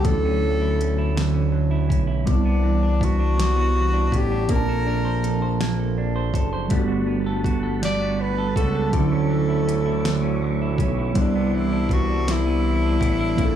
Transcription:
Already playing: G3 B3 F#4 A4
0.02 D2 E3 A3 A4, kick, closed hi-hat
0.06 D3 F#3 C#4
0.11 E4
0.25 C#4
0.44 F#3
0.61 E4
0.81 C#4, closed hi-hat
0.98 E4
1.16 D3, snare, closed hi-hat
1.34 C#4
1.52 F#3
1.71 E4
1.89 B1 C#4, kick, closed hi-hat
2.07 E4
2.24 C2 C3 G3 B3, kick, closed hi-hat
2.29 C3 D4
2.33 E4
2.45 B3
2.63 E3
2.83 D4
3.01 B3 F#4, kick, closed hi-hat
3.19 D4
3.37 C3, snare, closed hi-hat
3.56 B3
3.75 E3
3.93 D4
4.12 A1 B3 G4, kick, closed hi-hat
4.32 D4
4.46 A#1 F3 A#3, kick, closed hi-hat
4.51 C4 C#4 A#4
4.56 A5
4.60 D4
4.69 A4
4.86 D4
5.05 C5
5.24 A4, closed hi-hat
5.42 C5
5.61 A#3, snare, closed hi-hat
5.79 A4
5.98 D4
6.16 C5
6.34 F#1 A4, kick, closed hi-hat
6.53 C5
6.68 G1 G3 A3 F#5 A5 B5, kick, closed hi-hat
6.73 B3 D4
6.78 F#4
6.88 F#4
7.07 B3
7.26 A4
7.44 F#4, kick, closed hi-hat
7.63 A4
7.82 G3 D5, snare, closed hi-hat
8.01 F#4
8.19 B3 B4
8.38 A4
8.56 C#2 F#4 A4, kick, closed hi-hat
8.75 A4
8.90 D2 D3 F#3 A3 F#4 A4 E5 C#6 D6, kick, closed hi-hat
8.96 D3 C#4
9.00 E4
9.12 C#4
9.30 F#3
9.49 E4
9.67 C#4, closed hi-hat
9.86 E4
10.04 D3, snare, closed hi-hat
10.23 C#4
10.42 F#3
10.62 E4
10.78 B1 C#4, kick, closed hi-hat
10.98 E4
11.12 G3 B3 C6 D6, kick, closed hi-hat
11.17 C2 C3 D4
11.22 E4
11.35 B3
11.54 E3 E4
11.72 D4
11.89 B3 F#4, kick, closed hi-hat
12.10 D4
12.28 C3 E4, snare, closed hi-hat
12.46 B3
12.64 E3
12.82 D4
13.01 A1 B3, kick, closed hi-hat
13.19 D4
13.35 F3 A#3, kick, closed hi-hat
13.39 A#1 C4 D4 A5 C6
13.44 A4

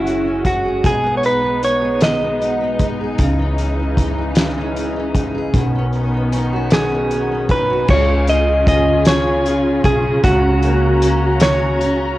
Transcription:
Already playing: F#1 F#2 G#3 C#4 E4 F#4 G#4
0.06 F#4, closed hi-hat
0.25 C#4
0.45 F#4, kick, closed hi-hat
0.65 G#4
0.84 B1 B2 B3 D#4 G#4, kick, closed hi-hat
1.04 B3
1.18 C#5
1.23 D#4 B4, closed hi-hat
1.44 B3
1.63 D#4 C#5, closed hi-hat
1.82 G#4
2.01 B2 D#5, snare, closed hi-hat
2.21 B3
2.41 D#4, closed hi-hat
2.61 B3
2.79 D#4, kick, closed hi-hat
3.01 G#4
3.18 C#2 C#3 E3, kick, closed hi-hat
3.39 C#4
3.58 D#4, closed hi-hat
3.79 C#4
3.97 D#4, kick, closed hi-hat
4.18 G#4
4.35 C#3, snare, closed hi-hat
4.58 C#4
4.76 D#4, closed hi-hat
4.96 C#4
5.15 D#4, kick, closed hi-hat
5.34 G#4
5.53 B1 B2 D#3 B3 C#4, kick, closed hi-hat
5.75 C#4
5.93 D#4, closed hi-hat
6.14 C#4
6.32 D#4, closed hi-hat
6.53 F#4
6.71 B2 G#4, snare, closed hi-hat
6.92 C#4
7.11 D#4, closed hi-hat
7.32 C#4
7.49 D#4 B4, kick, closed hi-hat
7.70 F#4
7.88 C#2 C#3 C#4 F4 G#4 C#5, kick, crash
8.27 C#4 D#5, closed hi-hat
8.67 F4 D#5, kick, closed hi-hat
9.05 C#4 C#5, snare, closed hi-hat
9.46 F4, closed hi-hat
9.84 B1 G#4, kick, closed hi-hat
10.24 C#2 C#3 F#4 A#5, kick, closed hi-hat
10.63 A#3, closed hi-hat
11.02 C#4, closed hi-hat
11.40 C#5, snare, closed hi-hat
11.81 C#4, closed hi-hat

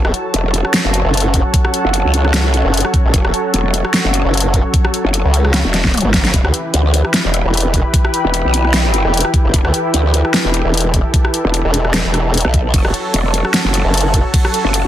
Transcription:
Already playing: F#3 C#4 E4 F#4 A4 B4 C#5 A5 B5
0.05 E1, cross-stick
0.14 closed hi-hat
0.27 F#5
0.31 E1 A4, closed hi-hat
0.54 closed hi-hat
0.65 cross-stick
0.74 snare, closed hi-hat
0.85 F#1
0.94 closed hi-hat
1.05 F#1
1.14 closed hi-hat
1.17 closed hi-hat
1.20 closed hi-hat
1.34 kick, closed hi-hat
1.54 kick, closed hi-hat
1.65 cross-stick
1.74 closed hi-hat
1.85 F#1
1.94 closed hi-hat
2.05 C#2
2.14 closed hi-hat
2.25 cross-stick
2.34 snare, closed hi-hat
2.46 C2
2.54 closed hi-hat
2.65 F#1
2.74 closed hi-hat
2.77 closed hi-hat
2.80 closed hi-hat
2.85 cross-stick
2.94 kick, closed hi-hat
3.05 A1
3.14 F#1, kick, closed hi-hat
3.25 E1, cross-stick
3.34 closed hi-hat
3.54 E1, closed hi-hat
3.74 closed hi-hat
3.85 cross-stick
3.94 snare, closed hi-hat
4.05 F#1
4.14 closed hi-hat
4.25 F#1
4.34 closed hi-hat
4.37 closed hi-hat
4.40 closed hi-hat
4.54 kick, closed hi-hat
4.74 kick, closed hi-hat
4.85 cross-stick
4.94 closed hi-hat
5.05 F#1
5.14 closed hi-hat
5.25 C#2
5.34 closed hi-hat
5.45 cross-stick
5.54 snare, closed hi-hat
5.65 E1
5.74 snare, closed hi-hat
5.85 kick, snare
5.94 closed hi-hat, mid tom
5.97 closed hi-hat
6.01 closed hi-hat
6.05 G1, mid tom
6.14 kick, snare, closed hi-hat
6.25 snare, closed hi-hat
6.34 E1 E3 E4 G4 B4, kick, closed hi-hat
6.45 D2, cross-stick
6.53 B4, closed hi-hat
6.74 D2 G5, closed hi-hat
6.94 closed hi-hat
7.05 cross-stick
7.14 snare, closed hi-hat
7.21 E1 B5
7.34 closed hi-hat
7.45 E1
7.54 closed hi-hat
7.57 closed hi-hat
7.60 closed hi-hat
7.74 kick, closed hi-hat
7.94 kick, closed hi-hat
8.05 cross-stick
8.14 closed hi-hat
8.25 E1
8.34 closed hi-hat
8.45 B1
8.54 closed hi-hat
8.65 cross-stick
8.74 snare, closed hi-hat
8.94 closed hi-hat
9.05 E1
9.14 closed hi-hat
9.17 closed hi-hat
9.21 closed hi-hat
9.25 cross-stick
9.34 kick, closed hi-hat
9.45 G1
9.54 E1 A4, kick, closed hi-hat
9.65 D2, cross-stick
9.74 closed hi-hat
9.94 D2, closed hi-hat
10.10 A5, closed hi-hat
10.25 cross-stick
10.34 snare, closed hi-hat
10.45 E1
10.54 closed hi-hat
10.65 E1
10.74 closed hi-hat
10.77 closed hi-hat
10.80 closed hi-hat
10.94 kick, closed hi-hat
11.14 kick, closed hi-hat
11.25 cross-stick
11.34 closed hi-hat
11.45 E1
11.54 closed hi-hat
11.65 E1
11.74 closed hi-hat
11.85 cross-stick
11.94 snare, closed hi-hat
12.05 E1
12.14 cross-stick, closed hi-hat
12.34 closed hi-hat
12.38 closed hi-hat
12.41 closed hi-hat
12.45 B1, cross-stick
12.54 kick, closed hi-hat
12.74 F#1 F#3 C#4 F#4 C#5, kick, closed hi-hat, ride
12.85 E1, cross-stick
12.94 closed hi-hat
13.03 A4
13.14 E1, closed hi-hat, ride
13.29 F#5
13.34 closed hi-hat
13.45 cross-stick
13.54 snare, closed hi-hat, ride
13.65 F#1
13.74 closed hi-hat
13.85 F#1
13.94 closed hi-hat, ride
13.97 closed hi-hat
14.01 closed hi-hat
14.14 kick, closed hi-hat
14.34 kick, closed hi-hat, ride
14.45 cross-stick
14.54 closed hi-hat
14.65 F#1
14.74 closed hi-hat, ride

